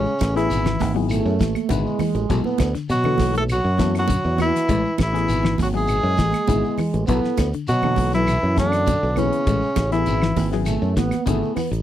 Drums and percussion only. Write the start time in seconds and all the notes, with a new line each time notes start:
0.05 shekere
0.19 kick, snare, closed hi-hat, high conga, claves, shekere
0.35 snare, closed hi-hat, shekere
0.50 snare, closed hi-hat, shekere
0.65 snare, low conga, claves, shekere
0.80 kick, snare, open hi-hat, high conga, low conga, shekere
0.96 shekere
1.09 closed hi-hat, claves, shekere
1.26 shekere
1.39 kick, snare, closed hi-hat, high conga, shekere
1.55 closed hi-hat, high conga, claves, shekere
1.69 kick, closed hi-hat, high conga, shekere
1.86 shekere
1.99 open hi-hat, high conga, low conga, claves, shekere
2.15 closed hi-hat, shekere
2.30 kick, closed hi-hat, shekere
2.44 high conga, shekere
2.58 kick, snare, closed hi-hat, high conga, claves, shekere
2.75 snare, closed hi-hat, shekere
2.89 snare, closed hi-hat, shekere
3.04 low conga, claves, shekere
3.18 kick, snare, open hi-hat, high conga, low conga, shekere
3.34 closed hi-hat, shekere
3.49 closed hi-hat, claves, shekere
3.65 shekere
3.78 kick, snare, closed hi-hat, high conga, shekere
3.94 snare, closed hi-hat, claves, shekere
4.08 kick, closed hi-hat, high conga, shekere
4.24 shekere
4.38 closed hi-hat, high conga, low conga, claves, shekere
4.55 snare, closed hi-hat, shekere
4.68 kick, closed hi-hat, shekere
4.85 shekere
4.98 kick, snare, closed hi-hat, high conga, claves, shekere
5.15 snare, closed hi-hat, shekere
5.28 closed hi-hat, shekere
5.43 snare, high conga, claves, shekere
5.58 kick, open hi-hat, high conga, low conga, shekere
5.74 shekere
5.87 closed hi-hat, claves, shekere
6.03 shekere
6.17 kick, snare, closed hi-hat, high conga, shekere
6.33 snare, closed hi-hat, high conga, claves, shekere
6.47 kick, closed hi-hat, high conga, shekere
6.64 shekere
6.78 open hi-hat, low conga, claves, shekere
6.94 closed hi-hat, shekere
7.07 kick, closed hi-hat, shekere
7.23 snare, shekere
7.37 kick, snare, closed hi-hat, high conga, claves, shekere
7.53 closed hi-hat, shekere
7.67 closed hi-hat, shekere
7.83 high conga, low conga, claves, shekere
7.96 kick, open hi-hat, high conga, low conga, shekere
8.12 snare, closed hi-hat, shekere
8.27 snare, closed hi-hat, claves, shekere
8.42 shekere
8.57 kick, snare, closed hi-hat, high conga, shekere
8.72 snare, closed hi-hat, claves, shekere
8.87 kick, closed hi-hat, high conga, shekere
9.03 shekere
9.16 closed hi-hat, high conga, low conga, claves, shekere
9.33 closed hi-hat, shekere
9.47 kick, closed hi-hat, shekere
9.62 shekere
9.76 kick, snare, closed hi-hat, high conga, claves, shekere
9.92 snare, closed hi-hat, shekere
10.06 closed hi-hat, shekere
10.22 snare, claves, shekere
10.36 kick, open hi-hat, high conga, low conga, shekere
10.52 snare
10.65 snare, closed hi-hat, claves, shekere
10.82 shekere
10.96 kick, snare, closed hi-hat, high conga, shekere
11.11 snare, closed hi-hat, high conga, claves, shekere
11.26 kick, closed hi-hat, high conga, shekere
11.43 shekere
11.56 open hi-hat, low conga, claves, shekere
11.73 closed hi-hat, shekere